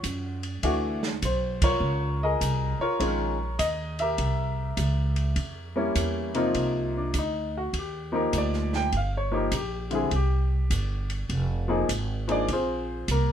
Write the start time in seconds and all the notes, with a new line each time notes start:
Already playing: F4 F#4
0.03 F#2, kick, hi-hat pedal, ride
0.43 ride
0.63 D2 E3 A3 D4 F#4, kick, ride
1.03 snare
1.22 B1 C5, kick, hi-hat pedal, ride
1.62 F4 A#4 C#5, kick, ride
1.80 C#2
2.23 G#4 A#4 D#5
2.41 C2, kick, hi-hat pedal, ride
2.79 F4 A#4 C#5, muted upright bass stroke
2.99 A#1 D#3 G#3 C#4 F4, kick, ride
3.59 D#2 D#5, kick, hi-hat pedal, ride
3.99 G4 A#4 E5, ride
4.18 C2, kick, ride
4.77 C#2, kick, hi-hat pedal, ride
5.16 ride
5.36 F2, kick, ride
5.76 G3 A#3 C#4 E4
5.95 E2, kick, hi-hat pedal, ride
6.34 C3 F3 A#3 D#4 F4, ride
6.54 C2, kick, ride
6.97 D4
7.14 D2 D4, kick, hi-hat pedal, ride
7.18 D#4
7.58 F#4
7.73 D#2, kick, ride
7.78 G4
8.12 F3 A#3 D#4 G4 A#4
8.33 D2, kick, hi-hat pedal, ride
8.38 D5
8.53 snare
8.73 G5, snare
8.92 G1, kick, ride
8.97 F5
9.17 C#5
9.31 F3 A#3 D#4 G4
9.37 A#4
9.52 A#1, kick, hi-hat pedal, ride
9.56 G4
9.91 D3 G3 C4 E4 G#4, ride
10.11 C2, kick, ride
10.15 G4
10.70 G1, kick, hi-hat pedal, ride
11.10 ride
11.29 F1, kick, ride
11.68 F3 A#3 D#4 G#4
11.89 G#1, kick, hi-hat pedal, ride
12.28 F3 A#3 D#4 G#4, ride
12.32 D4 D5
12.48 A#1, kick, ride
12.53 C4 F4 G#4 C5
13.08 C2 A#4, kick, hi-hat pedal, ride
13.12 A#3